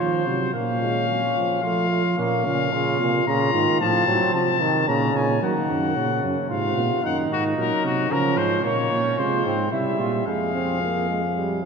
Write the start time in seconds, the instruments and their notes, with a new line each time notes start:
Already playing: flugelhorn F4
0.00 tuba D#3, trombone F3, trumpet C5
0.26 tuba C3, trombone F#3
0.53 tuba A#2, trombone A#3, flugelhorn C#4, trumpet F5
0.81 trombone G#3
1.09 trombone F#3
1.36 trombone F3
1.63 tuba F3, trombone A3, flugelhorn F4, trumpet F5
1.90 trombone A3
2.18 tuba A#2, trombone A#3, flugelhorn C#4, trumpet F5
2.46 trombone A#2, tuba C#3
2.72 tuba A#2, trombone C#3, flugelhorn F4
3.00 trombone A#2, tuba C3
3.27 tuba A#2, trombone C#3, flugelhorn F4, trumpet A#5
3.54 tuba G#2, trombone D#3
3.80 tuba A2, trombone F3, flugelhorn C4, trumpet A5
4.07 tuba A2, trombone F#3
4.34 tuba C3, trombone F3, trumpet A5
4.61 trombone D#3
4.86 tuba A#2, trombone C#3, flugelhorn C#4, trumpet A#5
5.15 tuba A#2, trumpet G#5
5.41 trombone D#3, tuba F#3, flugelhorn A#3, trumpet F#5
5.69 tuba F#2
5.96 tuba A#2, trombone C#3, flugelhorn C#4
6.24 tuba F#2
6.49 tuba G#2, trombone C3, flugelhorn F4, trumpet F5
6.78 tuba A#2
7.04 tuba F#2, trombone D#3, flugelhorn D#4, trumpet F#5
7.31 tuba G#2, trumpet F#4
7.57 tuba A#2, trombone F#3, trumpet A#4
7.85 tuba C3, trumpet F#4
8.10 tuba C#3, trombone F3, flugelhorn C#4, trumpet A#4
8.37 tuba G#2, trumpet C5
8.64 tuba A#2, trombone A#3, trumpet C#5, flugelhorn C#5
8.91 tuba A#2, flugelhorn C#4
9.18 tuba C3, trombone G#3, flugelhorn F4, trumpet C5
9.46 tuba G#2, flugelhorn C4
9.72 tuba C3, trombone G3, flugelhorn E4, trumpet E5
9.99 tuba A#2, flugelhorn F4
10.26 tuba F2, trombone G#3, flugelhorn G#4, trumpet F5
10.54 trombone C4
10.82 trombone A#3
11.09 trombone G#3
11.37 trombone G3